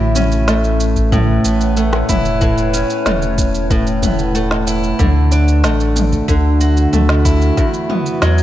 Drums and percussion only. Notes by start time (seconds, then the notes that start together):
0.15 mid tom, shaker
0.32 shaker
0.48 snare, shaker
0.64 shaker
0.80 shaker
0.96 kick, shaker
1.12 kick, mid tom, shaker
1.45 shaker
1.61 shaker
1.77 shaker
1.93 snare
2.09 kick, mid tom, shaker
2.25 shaker
2.41 kick, shaker
2.58 shaker
2.74 shaker
2.90 shaker
3.06 snare, mid tom, shaker
3.22 shaker
3.38 kick, shaker
3.55 shaker
3.70 kick, shaker
3.87 shaker
4.03 kick, mid tom, shaker
4.19 shaker
4.35 shaker
4.51 snare
4.67 shaker
4.83 shaker
4.99 kick, mid tom, shaker
5.32 shaker
5.48 shaker
5.64 snare, shaker
5.80 shaker
5.96 mid tom, shaker
6.12 kick, shaker
6.28 kick, shaker
6.61 shaker
6.77 shaker
6.93 mid tom, shaker
7.09 snare
7.25 kick, shaker
7.41 shaker
7.58 kick, shaker
7.74 shaker
7.89 mid tom
8.06 shaker
8.22 snare, shaker
8.38 shaker